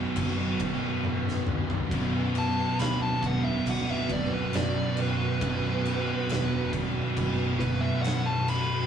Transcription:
0.00 0.63 B1 medium
0.00 1.88 B1 medium
0.00 0.59 F#2 loud
0.00 1.89 F#2 medium
0.00 0.60 B2 loud
0.00 1.92 B2 loud
0.00 8.87 B3 medium
0.00 8.87 F#4 medium
0.00 8.87 B4 medium
0.16 0.87 F#1 loud
0.16 kick loud
0.16 crash loud
0.60 1.03 B1 medium
0.60 1.02 F#2 medium
0.60 1.07 B2 medium
0.60 kick loud
0.60 crash medium
1.04 1.76 A1 medium
1.04 1.90 B1 medium
1.04 1.90 F#2 medium
1.04 1.93 B2 medium
1.04 high tom medium
1.28 snare medium
1.47 mid tom medium
1.70 floor tom loud
1.89 2.63 B0 loud
1.89 3.25 B1 loud
1.89 4.13 B1 medium
1.89 3.20 F#2 loud
1.89 4.08 F#2 medium
1.89 3.21 B2 loud
1.89 kick loud
1.89 crash medium
1.93 4.09 B2 medium
2.35 2.79 A5 medium
2.35 crash medium
2.79 3.15 D1 loud
2.79 3.01 B5 medium
2.79 snare loud
2.79 crash medium
3.02 3.23 A5 medium
3.21 3.58 E1 medium
3.21 5.40 B1 medium
3.21 5.39 F#2 medium
3.21 5.43 B2 loud
3.21 kick medium
3.21 crash medium
3.26 3.44 F#5 medium
3.44 3.66 E5 medium
3.66 4.02 D1 medium
3.66 kick medium
3.66 crash loud
3.70 3.89 F#5 medium
3.91 4.11 E5 medium
4.09 4.45 D1 loud
4.09 4.54 B1 medium
4.09 4.52 F#2 medium
4.09 4.57 B2 loud
4.09 4.32 D5 medium
4.09 kick medium
4.09 crash medium
4.33 4.54 B4 medium
4.53 5.24 F#1 medium
4.53 5.41 B1 medium
4.53 5.40 F#2 medium
4.53 4.98 D5 medium
4.53 snare loud
4.53 crash medium
4.57 5.44 B2 medium
4.97 crash medium
5.01 6.71 B4 medium
5.41 6.12 B0 loud
5.41 6.74 B1 medium
5.41 7.63 B1 medium
5.41 6.71 F#2 loud
5.41 7.58 F#2 medium
5.41 6.71 B2 loud
5.41 7.60 B2 loud
5.41 kick loud
5.41 crash medium
5.85 crash medium
6.27 6.99 E1 medium
6.27 crash medium
6.32 snare loud
6.71 8.87 B1 medium
6.71 8.87 F#2 medium
6.71 8.87 B2 medium
6.71 kick loud
6.71 crash medium
7.17 7.88 F#1 loud
7.17 kick loud
7.17 crash medium
7.60 8.03 B1 medium
7.60 8.02 F#2 medium
7.60 8.06 B2 medium
7.60 7.81 B4 loud
7.60 kick loud
7.60 crash medium
7.81 8.02 E5 loud
8.02 8.75 A1 medium
8.02 8.87 B1 medium
8.02 8.87 F#2 medium
8.02 8.24 F#5 loud
8.02 crash medium
8.06 8.87 B2 medium
8.06 snare loud
8.26 8.47 A5 medium
8.48 8.87 B5 medium
8.48 crash medium

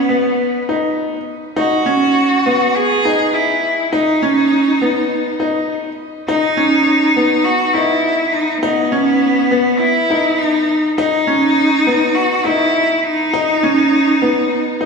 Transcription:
0.00 0.99 B3 loud
0.09 0.57 B3 medium
0.69 1.16 D#4 medium
1.56 1.81 D#4 loud
1.56 2.76 F#4 loud
1.86 2.34 C#4 medium
2.46 2.93 B3 medium
2.75 3.35 G#4 loud
3.05 3.52 D#4 medium
3.34 3.94 E4 loud
3.92 5.69 D#4 loud
3.92 4.16 D#4 loud
4.22 4.70 C#4 medium
4.81 5.29 B3 medium
5.40 5.87 D#4 medium
6.27 7.45 D#4 loud
6.27 6.52 D#4 loud
6.57 7.05 C#4 medium
7.16 7.64 B3 medium
7.44 7.75 F#4 loud
7.73 8.22 D#4 medium
7.73 8.34 E4 loud
8.32 8.60 D#4 loud
8.61 9.81 B3 loud
8.61 8.87 D#4 loud
8.92 9.40 C#4 medium
9.51 9.99 B3 medium
9.79 10.40 E4 loud
10.10 10.58 D#4 medium
10.38 10.83 D#4 medium
10.97 12.16 D#4 loud
10.97 11.22 D#4 loud
11.27 11.75 C#4 medium
11.87 12.34 B3 medium
12.15 12.45 F#4 loud
12.44 12.93 D#4 medium
12.44 13.04 E4 loud
13.03 14.86 D#4 loud
13.33 13.57 D#4 loud
13.63 14.11 C#4 medium
14.22 14.69 B3 medium
14.81 14.86 D#4 medium

